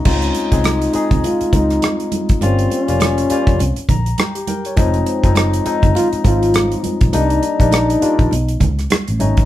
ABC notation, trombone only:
X:1
M:4/4
L:1/8
Q:"Swing 16ths" 1/4=102
K:Db
V:1 name="Trombone"
D2 E2 F E2 z | C D4 z3 | C2 E2 F F2 z | E E4 z3 |]